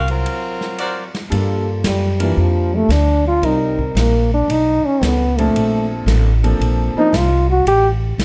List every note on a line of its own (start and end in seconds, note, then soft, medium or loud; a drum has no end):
0.00 0.23 C2 medium
0.08 1.11 F#3 medium
0.08 1.11 C4 medium
0.08 1.11 F4 medium
0.08 1.11 A#4 medium
0.08 ride soft
0.26 ride medium
0.61 snare soft
0.78 1.02 F#4 medium
0.78 1.03 A#4 medium
0.78 1.03 C5 medium
0.78 1.03 D5 medium
0.78 hi-hat pedal soft
0.78 ride medium
1.15 snare medium
1.15 ride soft
1.30 1.83 G2 medium
1.30 1.63 G3 medium
1.30 2.13 G3 medium
1.30 1.62 A#3 medium
1.30 2.13 A#3 medium
1.30 1.63 D4 medium
1.30 1.63 F4 medium
1.30 2.13 F4 medium
1.30 1.63 A4 medium
1.30 2.13 A4 loud
1.30 ride medium
1.84 2.36 F#2 medium
1.84 2.18 G3 medium
1.84 snare medium
1.84 hi-hat pedal medium
1.84 ride medium
2.20 2.42 E3 medium
2.20 2.87 G3 medium
2.20 2.87 A#3 medium
2.20 2.87 D4 medium
2.20 2.87 F4 medium
2.20 2.87 A#4 medium
2.20 ride medium
2.37 2.88 F2 medium
2.37 2.76 F3 medium
2.75 2.93 A3 medium
2.89 3.41 D2 medium
2.89 3.26 D4 medium
2.89 snare medium
2.89 hi-hat pedal medium
2.89 ride medium
3.28 3.47 F4 medium
3.42 3.94 C2 medium
3.42 4.25 G3 loud
3.42 4.25 C4 medium
3.42 4.25 D#4 medium
3.42 3.80 D#4 medium
3.42 4.24 A#4 loud
3.42 ride medium
3.79 3.98 G3 medium
3.79 kick medium
3.95 4.47 A#1 medium
3.95 snare medium
3.95 hi-hat pedal medium
3.95 ride medium
3.99 4.33 A#3 medium
4.34 4.52 D4 medium
4.48 4.82 B1 medium
4.48 4.87 D#4 loud
4.48 ride medium
4.84 5.05 C#4 medium
4.84 muted upright bass stroke soft
5.01 5.53 C#2 loud
5.01 5.26 D#3 medium
5.01 5.25 B3 medium
5.01 5.40 B3 medium
5.01 5.25 C#4 medium
5.01 5.25 A4 medium
5.01 snare medium
5.01 hi-hat pedal medium
5.01 ride medium
5.38 6.05 A#2 medium
5.38 6.05 F3 medium
5.38 5.91 A3 medium
5.38 6.05 C4 medium
5.38 6.05 D4 medium
5.38 6.05 A4 medium
5.38 ride soft
5.54 6.06 A#1 medium
5.54 ride medium
6.06 6.58 A1 loud
6.06 6.32 D3 medium
6.06 6.32 A#3 medium
6.06 6.32 C4 medium
6.06 6.32 A4 medium
6.06 snare medium
6.06 hi-hat pedal medium
6.06 ride medium
6.44 6.93 F3 medium
6.44 6.93 A#3 medium
6.44 6.93 C4 medium
6.44 6.93 D4 medium
6.44 6.93 A4 medium
6.44 ride soft
6.60 6.93 A#1 medium
6.60 ride medium
6.95 7.12 F3 medium
6.95 7.12 A#3 medium
6.95 7.13 C4 medium
6.95 7.13 D4 medium
6.95 7.18 D#4 loud
6.95 7.13 C5 medium
6.95 muted upright bass stroke soft
7.13 7.65 C2 loud
7.13 snare medium
7.13 hi-hat pedal medium
7.13 ride medium
7.17 7.50 F4 medium
7.50 7.66 F#4 medium
7.65 8.18 A1 medium
7.65 7.89 G4 medium
7.65 ride medium
8.18 8.25 C2 medium
8.18 snare medium
8.18 hi-hat pedal medium
8.18 ride medium